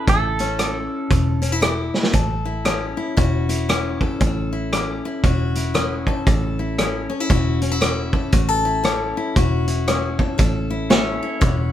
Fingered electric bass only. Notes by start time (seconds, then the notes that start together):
0.07 A1
1.10 E1
2.13 A1
3.17 E1
4.20 A1
5.24 E1
6.27 A1
7.30 E1
8.33 A1
9.36 E1
10.39 A1
11.42 E1